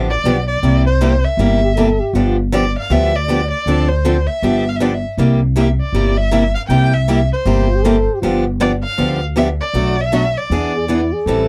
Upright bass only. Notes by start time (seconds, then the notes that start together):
Already playing: A1
0.24 B1
0.63 C2
1.37 G1
2.13 G1
2.90 D2
3.66 D2
4.42 G1
5.17 C2
5.93 G1
6.69 C2
7.45 G1
8.22 G1
8.98 D2
9.73 B1
10.50 E2
11.26 A1